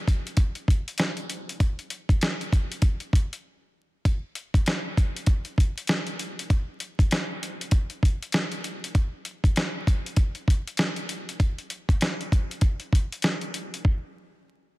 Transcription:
0.08 kick loud
0.08 closed hi-hat medium
0.27 closed hi-hat medium
0.37 kick loud
0.37 closed hi-hat loud
0.55 closed hi-hat soft
0.68 kick medium
0.68 closed hi-hat medium
0.88 closed hi-hat medium
0.98 snare loud
0.98 closed hi-hat medium
1.17 closed hi-hat soft
1.30 closed hi-hat medium
1.49 closed hi-hat medium
1.60 kick loud
1.60 closed hi-hat loud
1.79 closed hi-hat soft
1.90 closed hi-hat medium
2.09 kick medium
2.09 closed hi-hat medium
2.21 snare loud
2.21 closed hi-hat medium
2.41 closed hi-hat soft
2.53 kick loud
2.53 closed hi-hat medium
2.72 closed hi-hat soft
2.82 kick loud
2.82 closed hi-hat medium
3.00 closed hi-hat soft
3.13 kick medium
3.13 closed hi-hat medium
3.33 closed hi-hat medium
4.05 kick loud
4.05 closed hi-hat medium
4.35 closed hi-hat medium
4.54 kick medium
4.54 closed hi-hat medium
4.66 snare loud
4.66 closed hi-hat medium
4.97 kick loud
4.97 closed hi-hat medium
5.16 closed hi-hat soft
5.26 kick loud
5.26 closed hi-hat medium
5.45 closed hi-hat soft
5.58 kick medium
5.58 closed hi-hat medium
5.78 closed hi-hat medium
5.87 snare loud
5.87 closed hi-hat medium
6.07 closed hi-hat soft
6.19 closed hi-hat medium
6.39 closed hi-hat medium
6.50 kick loud
6.50 closed hi-hat medium
6.80 closed hi-hat medium
6.99 kick medium
6.99 closed hi-hat medium
7.11 snare loud
7.11 closed hi-hat medium
7.43 closed hi-hat medium
7.61 closed hi-hat soft
7.71 kick loud
7.71 closed hi-hat medium
7.90 closed hi-hat soft
8.03 kick medium
8.03 closed hi-hat medium
8.22 closed hi-hat medium
8.32 snare loud
8.32 closed hi-hat medium
8.52 closed hi-hat soft
8.64 closed hi-hat medium
8.84 closed hi-hat medium
8.95 kick loud
8.95 closed hi-hat medium
9.25 closed hi-hat medium
9.44 kick medium
9.44 closed hi-hat medium
9.56 snare loud
9.56 closed hi-hat medium
9.87 kick loud
9.87 closed hi-hat medium
10.06 closed hi-hat soft
10.16 kick loud
10.16 closed hi-hat medium
10.35 closed hi-hat soft
10.48 kick medium
10.48 closed hi-hat medium
10.67 closed hi-hat medium
10.77 snare loud
10.77 closed hi-hat medium
10.96 closed hi-hat soft
11.09 closed hi-hat medium
11.29 closed hi-hat medium
11.40 kick loud
11.40 closed hi-hat medium
11.58 closed hi-hat soft
11.70 closed hi-hat medium
11.89 kick medium
11.89 closed hi-hat medium
12.01 snare loud
12.01 closed hi-hat medium
12.21 closed hi-hat soft
12.32 kick medium
12.32 closed hi-hat medium
12.51 closed hi-hat soft
12.61 kick loud
12.61 closed hi-hat medium
12.80 closed hi-hat soft
12.93 kick medium
12.93 closed hi-hat medium
13.12 closed hi-hat medium
13.22 snare loud
13.22 closed hi-hat medium
13.41 closed hi-hat soft
13.54 closed hi-hat medium
13.74 closed hi-hat medium
13.85 kick loud

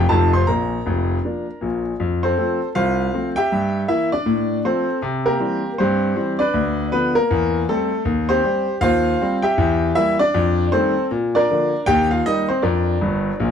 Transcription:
0.09 0.41 F1 medium
0.09 0.41 F2 medium
0.09 0.30 F3 medium
0.09 0.31 C4 medium
0.09 0.31 D#4 soft
0.09 0.31 A4 medium
0.09 0.29 A5 medium
0.33 0.47 C5 medium
0.33 0.45 C6 medium
0.47 0.78 A#1 medium
0.47 0.77 A#2 medium
0.47 1.81 A#4 medium
0.47 1.64 A#5 medium
0.86 1.16 F1 medium
0.86 1.16 F2 medium
1.25 1.45 F3 soft
1.25 1.45 A#3 soft
1.25 1.45 D4 soft
1.61 1.92 A#1 medium
1.61 1.91 A#2 medium
2.00 2.32 F2 medium
2.23 2.37 C4 medium
2.23 2.72 A4 medium
2.23 2.67 C5 medium
2.38 2.58 F3 soft
2.38 2.58 A3 soft
2.38 2.59 C4 soft
2.75 3.07 C2 medium
2.75 3.33 F4 medium
2.75 3.33 C5 medium
2.75 3.27 F5 loud
3.13 3.34 F3 soft
3.13 3.35 A3 medium
3.13 3.35 C4 medium
3.36 3.86 G4 medium
3.36 3.86 E5 medium
3.36 3.81 G5 loud
3.52 3.84 G2 medium
3.88 4.09 E3 soft
3.88 4.10 A#3 medium
3.88 4.11 E4 medium
3.88 4.08 E5 medium
4.12 4.62 D4 medium
4.12 4.57 D5 medium
4.26 4.59 A2 medium
4.64 4.85 F3 medium
4.64 4.86 A3 soft
4.64 5.00 C4 medium
4.64 5.01 A4 medium
4.64 4.97 C5 medium
5.02 5.35 C3 medium
5.26 5.75 A#3 medium
5.26 5.75 G4 medium
5.26 5.71 A#4 medium
5.40 5.61 E3 soft
5.40 5.61 G3 soft
5.40 5.61 C4 medium
5.78 6.12 G2 medium
5.78 6.15 C4 medium
5.78 6.37 G4 medium
5.78 6.31 C5 medium
6.16 6.37 E3 soft
6.16 6.37 G3 soft
6.16 6.38 C4 medium
6.39 6.89 D4 medium
6.39 6.89 B4 medium
6.39 6.84 D5 medium
6.54 6.86 D2 medium
6.92 7.14 D3 medium
6.92 7.14 F3 soft
6.92 7.15 B3 medium
6.92 7.12 B4 loud
7.15 7.66 A#3 medium
7.15 7.60 A#4 loud
7.31 7.63 E2 medium
7.69 7.90 G3 soft
7.69 8.05 A3 medium
7.69 7.90 C4 medium
7.69 8.01 A4 loud
8.05 8.38 D#2 medium
8.29 8.43 C4 medium
8.29 8.79 G4 medium
8.29 8.74 C5 loud
8.44 8.65 G3 soft
8.44 8.65 C4 medium
8.81 9.14 D#2 medium
8.81 9.40 F4 medium
8.81 9.40 C5 medium
8.81 9.34 F5 loud
9.21 9.42 G3 medium
9.21 9.42 C4 medium
9.42 9.93 G4 medium
9.42 9.93 E5 medium
9.42 9.88 G5 loud
9.58 9.91 E2 medium
9.95 10.17 E3 medium
9.95 10.18 G3 medium
9.95 10.17 A#3 medium
9.95 10.18 E4 medium
9.95 10.16 E5 loud
10.19 10.69 D4 medium
10.19 10.65 D5 loud
10.34 10.67 F2 medium
10.72 10.94 D#3 medium
10.72 10.94 G3 medium
10.72 10.94 A3 medium
10.72 11.09 C4 medium
10.72 11.09 A4 medium
10.72 11.05 C5 loud
11.11 11.43 A#2 medium
11.35 11.84 D4 medium
11.35 11.84 A#4 medium
11.35 11.79 D5 loud
11.50 11.71 D3 medium
11.50 11.71 F3 medium
11.50 11.72 A#3 medium
11.86 12.20 D#2 loud
11.86 12.09 G4 medium
11.86 12.07 G5 loud
12.11 12.25 F4 medium
12.11 12.23 F5 medium
12.26 12.47 D#3 medium
12.26 12.47 G3 medium
12.26 12.48 A#3 medium
12.26 12.48 D#4 medium
12.26 12.46 D#5 loud
12.49 12.63 C4 medium
12.49 12.61 C5 medium
12.62 12.96 F2 medium
12.62 13.51 D4 medium
12.62 13.51 A#4 medium
12.62 13.51 D5 medium
13.01 13.30 G1 medium
13.01 13.30 G2 medium
13.40 13.51 A#1 medium
13.40 13.51 A#2 medium

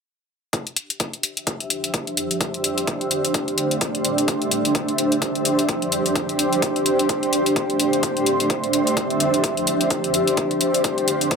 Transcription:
0.53 11.36 D4 medium
0.53 kick loud
0.53 closed hi-hat soft
0.58 11.36 G4 medium
0.67 closed hi-hat soft
0.76 11.36 C5 medium
0.76 closed hi-hat medium
0.86 2.41 E5 medium
0.90 closed hi-hat soft
1.00 kick loud
1.00 closed hi-hat medium
1.14 closed hi-hat soft
1.23 2.41 F3 medium
1.23 closed hi-hat loud
1.37 closed hi-hat medium
1.47 kick loud
1.47 closed hi-hat medium
1.60 closed hi-hat soft
1.70 closed hi-hat medium
1.84 closed hi-hat medium
1.94 kick loud
1.94 closed hi-hat medium
2.07 closed hi-hat soft
2.17 closed hi-hat medium
2.31 closed hi-hat medium
2.41 kick loud
2.41 closed hi-hat soft
2.54 closed hi-hat soft
2.64 closed hi-hat medium
2.78 closed hi-hat soft
2.87 kick loud
2.87 closed hi-hat medium
3.01 closed hi-hat soft
3.11 4.28 A3 medium
3.11 closed hi-hat medium
3.25 closed hi-hat medium
3.34 kick loud
3.34 closed hi-hat medium
3.39 6.15 E5 medium
3.48 closed hi-hat soft
3.58 closed hi-hat medium
3.71 closed hi-hat soft
3.81 kick loud
3.81 closed hi-hat medium
3.95 closed hi-hat soft
4.05 closed hi-hat medium
4.18 closed hi-hat medium
4.28 kick loud
4.28 closed hi-hat soft
4.42 closed hi-hat soft
4.51 closed hi-hat medium
4.65 closed hi-hat soft
4.75 kick loud
4.75 closed hi-hat soft
4.89 closed hi-hat soft
4.98 6.16 F3 medium
4.98 closed hi-hat medium
5.12 closed hi-hat soft
5.22 kick loud
5.22 closed hi-hat soft
5.35 closed hi-hat soft
5.45 closed hi-hat medium
5.59 closed hi-hat soft
5.69 kick loud
5.69 closed hi-hat soft
5.82 closed hi-hat soft
5.92 closed hi-hat medium
6.06 closed hi-hat soft
6.15 kick loud
6.15 closed hi-hat soft
6.29 closed hi-hat soft
6.39 closed hi-hat medium
6.53 closed hi-hat soft
6.62 kick loud
6.62 closed hi-hat soft
6.76 closed hi-hat soft
6.86 8.03 A3 medium
6.86 closed hi-hat medium
6.99 closed hi-hat soft
7.09 kick loud
7.09 closed hi-hat soft
7.23 closed hi-hat soft
7.33 closed hi-hat medium
7.39 9.90 E5 medium
7.46 closed hi-hat soft
7.56 kick loud
7.56 closed hi-hat soft
7.70 closed hi-hat soft
7.80 closed hi-hat medium
7.93 closed hi-hat soft
8.03 kick loud
8.03 closed hi-hat soft
8.17 closed hi-hat soft
8.26 closed hi-hat medium
8.40 closed hi-hat soft
8.50 kick loud
8.50 closed hi-hat soft
8.64 closed hi-hat soft
8.73 9.91 F3 medium
8.73 closed hi-hat medium
8.87 closed hi-hat soft
8.97 kick loud
8.97 closed hi-hat soft
9.10 closed hi-hat soft
9.20 closed hi-hat medium
9.34 closed hi-hat soft
9.44 kick loud
9.44 closed hi-hat soft
9.57 closed hi-hat soft
9.67 closed hi-hat medium
9.81 closed hi-hat soft
9.90 kick loud
9.90 closed hi-hat soft
10.04 closed hi-hat soft
10.14 closed hi-hat medium
10.28 closed hi-hat medium
10.37 kick loud
10.37 closed hi-hat medium
10.51 closed hi-hat soft
10.61 11.36 A3 medium
10.61 closed hi-hat medium
10.74 closed hi-hat medium
10.79 11.36 E5 medium
10.84 kick loud
10.84 closed hi-hat soft
10.98 closed hi-hat soft
11.08 closed hi-hat medium
11.21 closed hi-hat medium
11.31 kick loud
11.31 closed hi-hat medium

